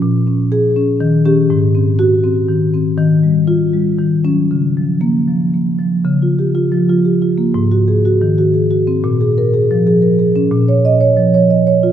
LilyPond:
\new Staff \with { instrumentName = "Marimba" } { \time 3/4 \key des \major \tempo 4 = 121 << { r4 aes'4 r8 g'8 | r4 ges'4 r4 | r4 f'4 r8 des'8 | r4 bes4 r4 |
\tuplet 3/2 { r4 g'8 } r2 | \tuplet 3/2 { r4 aes'8 } r2 | \tuplet 3/2 { r4 bes'8 } r2 | \tuplet 3/2 { r4 ees''8 } r2 | } \\ { bes,8 des'4 des'8 ees8 des'8 | aes,8 c'4 c'8 ees8 c'8 | ees8 g4 g8 ees8 ges8 | des8 f4 f8 bes8 f8 |
\tuplet 3/2 { des8 f'4 f'8 f8 f'8 g'8 f'8 bes8 } | \tuplet 3/2 { aes,8 ges'4 ges'8 ees8 ges'8 aes'8 ges'8 c'8 } | \tuplet 3/2 { bes,8 aes'4 aes'8 f8 aes'8 bes'8 aes'8 des'8 } | \tuplet 3/2 { bes,8 des''4 des''8 f8 des''8 ees''8 des''8 f'8 } | } >> }